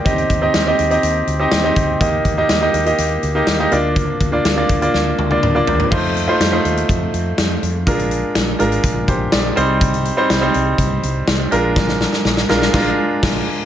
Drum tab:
CC |----------------|----------------|----------------|x---------------|
HH |xxx-x-xxx-x-x-x-|x-x-x-xxx-x-x-x-|x-x-x-xx--------|--x-x-xxx-x-x-x-|
SD |----o-------o---|----o-------o---|----o---o-------|----o-------o---|
T1 |----------------|----------------|----------oo----|----------------|
T2 |----------------|----------------|------------o---|----------------|
FT |----------------|----------------|--------------oo|----------------|
BD |o-o-----------o-|o-o-------------|o-o---o---------|o-------o-------|

CC |----------------|----------------|--------x---x---|
HH |xxx-x-xxx-x-x-x-|xxx-x-x-x-x-x-x-|----------------|
SD |----o-------o---|----o-------o---|ooooooooo---o---|
T1 |----------------|----------------|----------------|
T2 |----------------|----------------|----------------|
FT |----------------|----------------|----------------|
BD |o-------o-o-----|o-------o-------|o-------o---o---|